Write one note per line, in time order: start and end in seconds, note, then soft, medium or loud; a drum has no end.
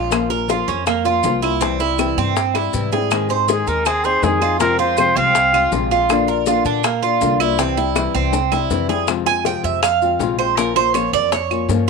0.00 0.62 A#1 loud
0.00 0.11 G#3 soft
0.00 0.11 C#4 medium
0.00 0.10 F4 medium
0.00 0.29 F4 medium
0.10 0.29 F3 medium
0.10 0.29 A#3 medium
0.10 0.29 C#4 medium
0.10 0.28 F4 medium
0.10 high bongo medium
0.10 claves medium
0.10 maracas medium
0.29 0.48 A#3 soft
0.29 0.48 C#4 soft
0.29 0.48 F4 soft
0.29 0.48 A#4 medium
0.29 high bongo soft
0.29 maracas soft
0.48 0.85 F3 medium
0.48 0.86 A#3 medium
0.48 0.86 C#4 medium
0.48 0.68 F4 medium
0.48 0.86 F4 medium
0.48 high bongo medium
0.48 maracas medium
0.68 1.20 F2 medium
0.68 0.86 C#4 medium
0.68 high bongo soft
0.68 maracas soft
0.86 1.05 A#3 medium
0.86 muted nylon-string guitar stroke medium
0.86 high bongo medium
0.86 claves medium
0.86 maracas medium
1.04 1.23 A#3 soft
1.04 1.23 C#4 soft
1.04 1.23 F4 soft
1.04 1.42 F4 medium
1.04 maracas soft
1.23 2.12 C2 loud
1.23 1.41 F3 medium
1.23 1.42 A#3 medium
1.23 1.42 C#4 medium
1.23 1.41 F4 medium
1.23 high bongo soft
1.23 low bongo medium
1.23 maracas medium
1.42 1.61 A#3 soft
1.42 1.61 C#4 soft
1.42 1.61 E4 medium
1.42 1.61 F4 soft
1.42 high bongo soft
1.42 claves medium
1.42 maracas soft
1.60 1.79 C3 medium
1.60 1.79 E3 medium
1.60 1.79 G3 medium
1.60 1.79 C4 medium
1.60 1.80 C4 medium
1.60 1.78 E4 medium
1.60 high bongo medium
1.60 maracas medium
1.80 1.98 G3 soft
1.80 1.98 C4 soft
1.80 1.98 E4 medium
1.80 2.16 E4 medium
1.80 high bongo soft
1.80 maracas soft
1.98 2.34 C3 medium
1.98 2.35 E3 medium
1.98 2.35 G3 medium
1.98 2.35 C4 medium
1.98 2.35 E4 medium
1.98 high bongo medium
1.98 claves medium
1.98 maracas medium
2.17 2.70 G2 medium
2.17 2.54 C4 medium
2.17 high bongo soft
2.17 maracas soft
2.36 muted nylon-string guitar stroke medium
2.36 high bongo medium
2.36 maracas medium
2.54 2.73 G3 soft
2.54 2.73 C4 soft
2.54 2.72 E4 soft
2.54 2.91 E4 medium
2.54 high bongo medium
2.54 claves medium
2.54 maracas soft
2.73 3.61 G#2 medium
2.73 2.91 C3 medium
2.73 2.91 E3 medium
2.73 2.92 G3 medium
2.73 2.92 C4 medium
2.73 2.92 E4 medium
2.73 maracas medium
2.92 3.11 G3 soft
2.92 3.11 C4 soft
2.92 3.10 E4 soft
2.92 3.29 G#4 medium
2.92 low bongo medium
2.92 maracas soft
3.11 3.29 D#3 medium
3.11 3.29 G#3 medium
3.11 3.29 C4 medium
3.11 3.29 D#4 medium
3.11 3.27 G#4 medium
3.11 high bongo medium
3.11 claves medium
3.11 maracas medium
3.29 3.47 C4 soft
3.29 3.48 D#4 soft
3.29 3.47 G#4 soft
3.29 3.48 C5 medium
3.29 high bongo soft
3.29 maracas soft
3.47 3.84 D#3 medium
3.47 3.84 G#3 medium
3.47 3.85 C4 medium
3.47 3.85 D#4 medium
3.47 3.67 G#4 medium
3.47 3.85 G#4 medium
3.47 3.69 G#4 medium
3.47 high bongo medium
3.47 maracas medium
3.67 4.19 D#2 medium
3.67 3.85 D#4 medium
3.67 3.88 A#4 medium
3.67 high bongo soft
3.67 maracas soft
3.85 4.04 C4 medium
3.85 4.06 G#4 medium
3.85 muted nylon-string guitar stroke medium
3.85 high bongo medium
3.85 claves medium
3.85 maracas medium
4.04 4.22 C4 soft
4.04 4.23 D#4 soft
4.04 4.22 G#4 soft
4.04 4.41 G#4 medium
4.04 4.26 C5 loud
4.04 maracas soft
4.22 5.10 F2 medium
4.22 4.41 D#3 medium
4.22 4.41 G#3 medium
4.22 4.41 C4 medium
4.22 4.41 D#4 medium
4.22 4.59 G#4 medium
4.22 4.40 G#4 medium
4.22 high bongo soft
4.22 low bongo medium
4.22 maracas medium
4.41 4.60 C4 soft
4.41 4.60 D#4 medium
4.41 4.60 F4 medium
4.41 4.59 G#4 medium
4.41 high bongo soft
4.41 claves medium
4.41 maracas soft
4.59 4.78 C3 medium
4.59 4.78 F3 medium
4.59 4.78 G#3 medium
4.59 4.78 C4 medium
4.59 4.79 C4 medium
4.59 4.78 F4 medium
4.59 4.77 A#4 medium
4.59 high bongo medium
4.59 maracas medium
4.79 4.98 G#3 soft
4.79 4.98 C4 soft
4.79 5.15 F4 medium
4.79 4.96 C5 medium
4.79 high bongo soft
4.79 maracas soft
4.97 5.34 C3 medium
4.97 5.34 F3 medium
4.97 5.34 G#3 medium
4.97 5.35 C4 medium
4.97 5.35 F4 medium
4.97 5.18 C5 loud
4.97 high bongo medium
4.97 claves medium
4.97 maracas medium
5.16 5.68 C2 loud
5.16 5.53 C4 medium
5.16 5.73 F5 loud
5.16 high bongo soft
5.16 maracas soft
5.35 muted nylon-string guitar stroke medium
5.35 high bongo medium
5.35 maracas medium
5.53 5.71 G#3 soft
5.53 5.72 C4 soft
5.53 5.71 F4 medium
5.53 5.90 F4 medium
5.53 claves medium
5.53 maracas soft
5.71 6.60 A#1 medium
5.71 5.90 C3 medium
5.71 5.90 F3 medium
5.71 5.90 G#3 medium
5.71 5.91 C4 medium
5.71 5.90 F4 medium
5.71 high bongo soft
5.71 low bongo medium
5.71 maracas medium
5.91 6.10 G#3 soft
5.91 6.10 C4 soft
5.91 6.09 F4 medium
5.91 6.27 F4 medium
5.91 high bongo soft
5.91 maracas soft
6.09 6.27 D3 medium
6.09 6.28 A#3 medium
6.09 6.28 D4 medium
6.09 6.27 F4 medium
6.09 high bongo medium
6.09 claves medium
6.09 maracas medium
6.28 6.46 A#3 soft
6.28 6.46 D4 soft
6.28 6.46 F4 soft
6.28 6.46 A#4 medium
6.28 high bongo soft
6.28 maracas soft
6.46 6.82 D3 medium
6.46 6.83 A#3 medium
6.46 6.83 D4 medium
6.46 6.65 F4 medium
6.46 6.84 F4 medium
6.46 high bongo medium
6.46 maracas medium
6.65 7.17 A#2 medium
6.65 6.84 D4 medium
6.65 high bongo soft
6.65 maracas soft
6.84 7.02 A#3 medium
6.84 muted nylon-string guitar stroke medium
6.84 high bongo medium
6.84 claves medium
6.84 maracas medium
7.03 7.21 A#3 soft
7.03 7.21 D4 soft
7.03 7.39 F4 medium
7.03 7.21 F4 soft
7.03 maracas soft
7.21 8.09 C2 loud
7.21 7.40 D3 medium
7.21 7.40 A#3 medium
7.21 7.40 D4 medium
7.21 7.38 F4 medium
7.21 high bongo soft
7.21 low bongo medium
7.21 maracas medium
7.40 7.59 A#3 soft
7.40 7.58 D4 medium
7.40 7.58 E4 medium
7.40 7.58 F4 medium
7.40 high bongo soft
7.40 claves medium
7.40 maracas soft
7.59 7.77 C3 medium
7.59 7.77 E3 medium
7.59 7.77 G3 medium
7.59 7.77 C4 medium
7.59 7.76 E4 medium
7.59 high bongo medium
7.59 maracas medium
7.77 7.96 G3 soft
7.77 7.96 C4 soft
7.77 8.14 E4 medium
7.77 7.95 E4 soft
7.77 high bongo soft
7.77 maracas soft
7.96 8.32 C3 medium
7.96 8.33 E3 medium
7.96 8.33 G3 medium
7.96 8.33 C4 medium
7.96 8.34 E4 medium
7.96 high bongo loud
7.96 claves medium
7.96 maracas medium
8.15 8.67 C2 loud
8.15 8.51 C4 medium
8.15 maracas soft
8.33 muted nylon-string guitar stroke medium
8.33 low bongo medium
8.33 maracas medium
8.52 8.70 G3 soft
8.52 8.71 C4 soft
8.52 8.88 E4 medium
8.52 8.70 E4 soft
8.52 low bongo medium
8.52 claves medium
8.52 maracas soft
8.70 9.58 F2 medium
8.70 8.88 C3 medium
8.70 8.89 E3 medium
8.70 8.89 G3 medium
8.70 8.89 C4 medium
8.70 8.87 E4 medium
8.70 low bongo medium
8.70 maracas medium
8.89 9.08 G3 soft
8.89 9.08 C4 soft
8.89 9.07 E4 medium
8.89 9.07 G#4 medium
8.89 low bongo medium
8.89 maracas soft
9.07 9.26 C3 medium
9.07 9.26 F3 medium
9.07 9.26 G#3 medium
9.07 9.26 C4 medium
9.07 9.24 F4 medium
9.07 high bongo medium
9.07 claves medium
9.07 maracas medium
9.26 9.44 G#3 soft
9.26 9.45 C4 soft
9.26 9.44 F4 medium
9.26 9.45 G#5 loud
9.26 high bongo soft
9.26 maracas soft
9.44 9.81 C3 medium
9.44 9.82 F3 medium
9.44 9.82 G#3 medium
9.44 9.82 C4 medium
9.44 9.83 F4 medium
9.44 9.64 G5 medium
9.44 high bongo medium
9.44 maracas medium
9.64 10.16 F2 medium
9.64 9.82 E5 medium
9.64 high bongo soft
9.64 maracas soft
9.83 10.35 F5 medium
9.83 muted nylon-string guitar stroke medium
9.83 high bongo medium
9.83 claves medium
9.83 maracas medium
10.02 10.21 G#3 soft
10.02 10.20 C4 soft
10.02 10.20 F4 medium
10.02 maracas soft
10.19 11.07 A#1 medium
10.19 10.38 C3 medium
10.19 10.39 F3 medium
10.19 10.39 G#3 medium
10.19 10.39 C4 medium
10.19 10.38 F4 medium
10.19 high bongo soft
10.19 low bongo medium
10.19 maracas medium
10.39 10.58 G#3 soft
10.39 10.58 C4 medium
10.39 10.57 F4 medium
10.39 10.57 C5 medium
10.39 high bongo soft
10.39 claves medium
10.39 maracas soft
10.57 10.75 F3 medium
10.57 10.76 A#3 medium
10.57 10.76 C#4 medium
10.57 10.74 F4 medium
10.57 10.75 A#4 medium
10.57 high bongo medium
10.57 maracas medium
10.75 10.94 A#3 soft
10.75 10.94 C#4 soft
10.75 10.94 F4 soft
10.75 10.94 C5 loud
10.75 high bongo soft
10.75 maracas soft
10.94 11.31 F3 medium
10.94 11.31 A#3 medium
10.94 11.31 C#4 medium
10.94 11.32 F4 medium
10.94 11.12 C#5 medium
10.94 high bongo medium
10.94 claves medium
10.94 maracas medium
11.13 11.65 F2 medium
11.13 11.31 D5 loud
11.13 high bongo soft
11.13 maracas soft
11.32 11.84 C#5 medium
11.32 muted nylon-string guitar stroke medium
11.32 high bongo medium
11.32 maracas medium
11.50 11.68 A#3 soft
11.50 11.69 C#4 soft
11.50 11.68 F4 soft
11.50 claves medium
11.50 maracas soft
11.69 11.90 G2 medium
11.69 11.87 F3 medium
11.69 11.87 A#3 medium
11.69 11.88 C#4 medium
11.69 11.86 F4 medium
11.69 high bongo soft
11.69 low bongo medium
11.69 maracas medium